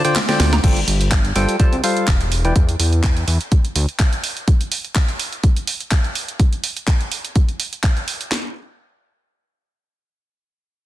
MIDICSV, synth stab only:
0, 0, Header, 1, 2, 480
1, 0, Start_track
1, 0, Tempo, 480000
1, 636, Time_signature, 4, 2, 24, 8
1, 10855, End_track
2, 0, Start_track
2, 0, Title_t, "Synth stab"
2, 0, Program_c, 0, 62
2, 46, Note_on_c, 0, 79, 98
2, 47, Note_on_c, 0, 50, 92
2, 47, Note_on_c, 0, 65, 80
2, 47, Note_on_c, 0, 72, 84
2, 47, Note_on_c, 0, 74, 80
2, 198, Note_off_c, 0, 50, 0
2, 198, Note_off_c, 0, 72, 0
2, 198, Note_off_c, 0, 79, 0
2, 199, Note_off_c, 0, 65, 0
2, 199, Note_off_c, 0, 74, 0
2, 286, Note_on_c, 0, 50, 84
2, 286, Note_on_c, 0, 74, 74
2, 286, Note_on_c, 0, 79, 92
2, 287, Note_on_c, 0, 65, 77
2, 287, Note_on_c, 0, 72, 73
2, 610, Note_off_c, 0, 50, 0
2, 610, Note_off_c, 0, 65, 0
2, 610, Note_off_c, 0, 72, 0
2, 610, Note_off_c, 0, 74, 0
2, 610, Note_off_c, 0, 79, 0
2, 637, Note_on_c, 0, 55, 84
2, 637, Note_on_c, 0, 79, 98
2, 638, Note_on_c, 0, 65, 78
2, 638, Note_on_c, 0, 69, 81
2, 638, Note_on_c, 0, 72, 81
2, 802, Note_off_c, 0, 55, 0
2, 802, Note_off_c, 0, 65, 0
2, 802, Note_off_c, 0, 69, 0
2, 802, Note_off_c, 0, 72, 0
2, 802, Note_off_c, 0, 79, 0
2, 1358, Note_on_c, 0, 55, 99
2, 1358, Note_on_c, 0, 65, 88
2, 1358, Note_on_c, 0, 69, 84
2, 1358, Note_on_c, 0, 72, 83
2, 1358, Note_on_c, 0, 79, 108
2, 1564, Note_off_c, 0, 55, 0
2, 1564, Note_off_c, 0, 65, 0
2, 1564, Note_off_c, 0, 69, 0
2, 1564, Note_off_c, 0, 72, 0
2, 1564, Note_off_c, 0, 79, 0
2, 1596, Note_on_c, 0, 81, 100
2, 1597, Note_on_c, 0, 55, 94
2, 1597, Note_on_c, 0, 65, 87
2, 1597, Note_on_c, 0, 69, 79
2, 1597, Note_on_c, 0, 72, 87
2, 1762, Note_off_c, 0, 55, 0
2, 1762, Note_off_c, 0, 65, 0
2, 1762, Note_off_c, 0, 69, 0
2, 1762, Note_off_c, 0, 72, 0
2, 1762, Note_off_c, 0, 81, 0
2, 1837, Note_on_c, 0, 55, 98
2, 1837, Note_on_c, 0, 65, 88
2, 1837, Note_on_c, 0, 69, 87
2, 1837, Note_on_c, 0, 72, 88
2, 1837, Note_on_c, 0, 77, 107
2, 2092, Note_off_c, 0, 55, 0
2, 2092, Note_off_c, 0, 65, 0
2, 2092, Note_off_c, 0, 69, 0
2, 2092, Note_off_c, 0, 72, 0
2, 2092, Note_off_c, 0, 77, 0
2, 2447, Note_on_c, 0, 52, 92
2, 2447, Note_on_c, 0, 64, 75
2, 2447, Note_on_c, 0, 71, 77
2, 2447, Note_on_c, 0, 74, 80
2, 2447, Note_on_c, 0, 79, 101
2, 2540, Note_off_c, 0, 52, 0
2, 2540, Note_off_c, 0, 64, 0
2, 2540, Note_off_c, 0, 71, 0
2, 2540, Note_off_c, 0, 74, 0
2, 2540, Note_off_c, 0, 79, 0
2, 10855, End_track
0, 0, End_of_file